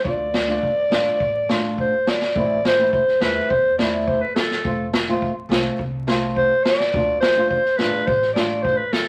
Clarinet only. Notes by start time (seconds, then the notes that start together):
0.04 D5
1.80 C5
2.09 D5
2.66 C5
2.93 C5
3.21 B4
3.50 C5
3.78 D5
4.08 C5
4.21 B4
4.35 A4
6.37 C5
6.64 D5
7.20 C5
7.49 C5
7.77 B4
8.06 C5
8.33 D5
8.63 C5
8.77 B4
8.93 A4